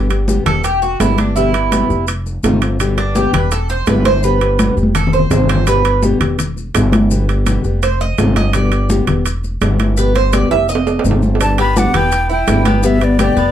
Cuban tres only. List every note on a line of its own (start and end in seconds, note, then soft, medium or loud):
0.46 0.64 A4 medium
0.64 0.82 G4 medium
0.82 1.00 F#4 medium
1.00 1.18 E4 medium
1.18 1.35 D4 medium
1.36 2.04 E4 medium
2.98 3.15 D4 medium
3.16 3.33 G4 medium
3.34 3.51 B4 medium
3.52 3.69 A4 medium
3.70 3.87 C5 loud
3.88 4.05 B4 medium
4.05 4.23 C5 loud
4.24 4.74 B4 medium
4.95 5.13 A4 medium
5.13 5.47 C5 medium
5.49 5.67 C5 loud
5.68 6.01 B4 medium
7.83 8.00 C5 medium
8.01 8.34 D#5 loud
8.37 8.54 D#5 loud
8.54 8.88 D5 medium
9.97 10.15 B4 medium
10.15 10.33 C5 loud
10.33 10.51 D5 medium
10.51 10.68 E5 medium
10.69 11.02 D#5 medium
11.59 11.76 B3 medium
11.76 11.94 D4 medium
11.94 12.29 B3 medium
12.29 12.64 E4 medium
12.66 12.82 B3 loud
12.83 13.18 B3 medium
13.19 13.36 G4 medium
13.37 13.52 B3 medium